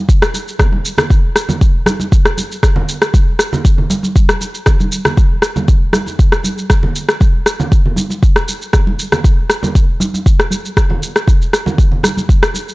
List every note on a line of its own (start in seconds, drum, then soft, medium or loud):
0.09 kick loud
0.09 shaker medium
0.22 cross-stick loud
0.22 shaker soft
0.34 muted conga soft
0.34 shaker loud
0.48 shaker soft
0.59 kick loud
0.59 cross-stick medium
0.59 low conga medium
0.59 shaker medium
0.72 muted conga medium
0.72 high conga medium
0.85 shaker loud
0.98 cross-stick medium
0.98 low conga medium
0.98 shaker soft
1.10 kick loud
1.10 muted conga soft
1.10 shaker medium
1.36 cross-stick medium
1.36 shaker medium
1.49 muted conga soft
1.49 high conga medium
1.49 low conga loud
1.49 shaker soft
1.61 kick loud
1.61 shaker medium
1.86 cross-stick medium
1.86 high conga loud
1.86 shaker medium
2.00 muted conga medium
2.00 high conga medium
2.00 shaker soft
2.12 kick loud
2.12 shaker medium
2.25 cross-stick medium
2.25 shaker soft
2.38 muted conga soft
2.38 high conga medium
2.38 shaker loud
2.52 shaker soft
2.63 kick loud
2.63 cross-stick medium
2.63 shaker medium
2.76 muted conga soft
2.76 low conga loud
2.89 shaker loud
3.02 cross-stick medium
3.02 shaker soft
3.14 kick loud
3.14 muted conga soft
3.14 shaker medium
3.39 cross-stick medium
3.39 shaker medium
3.53 muted conga soft
3.53 low conga loud
3.53 shaker soft
3.65 kick loud
3.65 shaker medium
3.78 low conga medium
3.90 high conga loud
3.90 shaker medium
4.03 muted conga soft
4.03 high conga medium
4.03 shaker soft
4.16 kick loud
4.16 shaker medium
4.29 cross-stick medium
4.29 shaker soft
4.41 muted conga soft
4.41 shaker loud
4.55 shaker soft
4.66 kick loud
4.66 cross-stick medium
4.66 low conga medium
4.66 shaker medium
4.80 muted conga soft
4.80 high conga medium
4.80 shaker soft
4.92 shaker loud
5.05 cross-stick medium
5.05 low conga medium
5.05 shaker soft
5.17 kick loud
5.17 muted conga medium
5.17 shaker medium
5.42 cross-stick medium
5.42 shaker medium
5.56 muted conga soft
5.56 high conga medium
5.56 low conga loud
5.56 shaker soft
5.68 kick loud
5.68 shaker medium
5.93 cross-stick medium
5.93 high conga loud
5.93 shaker medium
6.06 muted conga soft
6.06 high conga medium
6.06 shaker soft
6.19 kick loud
6.19 shaker medium
6.32 cross-stick medium
6.32 shaker soft
6.43 muted conga soft
6.43 high conga medium
6.43 shaker medium
6.58 shaker soft
6.70 kick loud
6.70 cross-stick medium
6.70 shaker soft
6.83 muted conga soft
6.83 low conga medium
6.96 shaker medium
7.09 cross-stick medium
7.09 shaker soft
7.20 kick loud
7.20 muted conga soft
7.20 shaker soft
7.46 cross-stick medium
7.46 shaker medium
7.59 muted conga soft
7.59 low conga loud
7.59 shaker soft
7.72 kick loud
7.72 shaker medium
7.86 low conga medium
7.96 high conga loud
7.96 shaker medium
8.10 muted conga medium
8.10 high conga medium
8.10 shaker soft
8.23 kick loud
8.23 shaker medium
8.36 cross-stick medium
8.36 shaker soft
8.48 muted conga soft
8.48 shaker medium
8.62 shaker soft
8.73 kick loud
8.73 cross-stick medium
8.73 low conga medium
8.73 shaker soft
8.87 muted conga medium
8.87 high conga medium
8.99 shaker medium
9.12 cross-stick medium
9.12 low conga medium
9.12 shaker soft
9.24 kick loud
9.24 muted conga soft
9.24 shaker soft
9.50 cross-stick medium
9.50 shaker medium
9.63 muted conga soft
9.63 high conga medium
9.63 low conga loud
9.63 shaker soft
9.75 kick loud
9.75 shaker soft
10.00 high conga medium
10.00 shaker medium
10.14 muted conga medium
10.14 high conga medium
10.14 shaker soft
10.26 kick loud
10.26 shaker medium
10.40 cross-stick medium
10.40 shaker soft
10.51 muted conga soft
10.51 high conga medium
10.51 shaker medium
10.65 shaker soft
10.77 kick loud
10.77 cross-stick medium
10.77 shaker soft
10.90 muted conga medium
10.90 low conga medium
11.03 shaker medium
11.16 cross-stick medium
11.16 shaker soft
11.27 kick loud
11.27 muted conga medium
11.27 shaker soft
11.42 shaker soft
11.53 cross-stick medium
11.53 shaker medium
11.66 muted conga soft
11.66 high conga medium
11.66 low conga loud
11.66 shaker soft
11.78 kick loud
11.78 shaker medium
11.92 low conga medium
12.03 cross-stick medium
12.03 high conga medium
12.03 shaker medium
12.17 muted conga medium
12.17 high conga medium
12.17 shaker soft
12.29 kick loud
12.29 shaker medium
12.43 cross-stick loud
12.43 shaker soft
12.54 muted conga soft
12.54 shaker medium
12.69 shaker soft